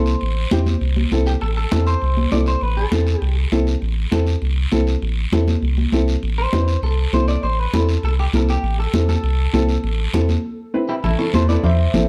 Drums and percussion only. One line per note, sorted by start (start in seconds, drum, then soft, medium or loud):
0.06 short guiro medium
0.21 high conga soft
0.21 long guiro medium
0.51 high conga medium
0.51 short guiro medium
0.66 high conga medium
0.66 short guiro medium
0.81 high conga soft
0.81 long guiro medium
0.97 high conga medium
1.12 high conga medium
1.12 short guiro medium
1.26 short guiro medium
1.41 high conga soft
1.41 long guiro medium
1.71 high conga loud
1.71 short guiro medium
1.87 short guiro medium
2.02 high conga soft
2.02 long guiro medium
2.17 high conga medium
2.31 high conga medium
2.31 short guiro medium
2.46 short guiro medium
2.61 high conga soft
2.61 long guiro medium
2.92 high conga medium
2.92 short guiro medium
3.07 short guiro medium
3.22 high conga soft
3.22 long guiro medium
3.52 high conga medium
3.52 short guiro medium
3.67 short guiro medium
3.82 high conga soft
3.82 long guiro medium
4.12 high conga loud
4.12 short guiro medium
4.27 short guiro medium
4.42 high conga soft
4.42 long guiro medium
4.72 high conga medium
4.72 short guiro medium
4.87 short guiro medium
5.02 high conga soft
5.02 long guiro medium
5.32 high conga medium
5.32 short guiro medium
5.48 high conga medium
5.48 short guiro medium
5.62 high conga soft
5.62 long guiro medium
5.78 high conga medium
5.92 high conga medium
5.92 short guiro medium
6.08 short guiro medium
6.23 high conga soft
6.23 long guiro medium
6.53 high conga medium
6.53 short guiro medium
6.68 short guiro medium
6.83 high conga soft
6.83 long guiro medium
7.13 high conga medium
7.13 short guiro medium
7.28 short guiro medium
7.43 high conga soft
7.43 long guiro medium
7.73 high conga medium
7.73 short guiro medium
7.89 short guiro medium
8.03 high conga soft
8.03 long guiro medium
8.33 high conga medium
8.33 short guiro medium
8.49 short guiro medium
8.64 high conga soft
8.64 long guiro medium
8.94 high conga medium
8.94 short guiro medium
9.09 high conga medium
9.09 short guiro medium
9.23 high conga soft
9.23 long guiro medium
9.54 high conga medium
9.54 short guiro medium
9.69 short guiro medium
9.84 high conga soft
9.84 long guiro medium
10.14 high conga medium
10.14 short guiro medium
10.29 high conga medium
10.29 short guiro medium
11.04 high conga soft
11.04 low conga medium
11.04 long guiro medium
11.34 high conga medium
11.34 short guiro medium
11.49 short guiro medium
11.64 high conga soft
11.64 low conga medium
11.64 long guiro medium
11.94 high conga medium
11.94 low conga medium
11.94 short guiro medium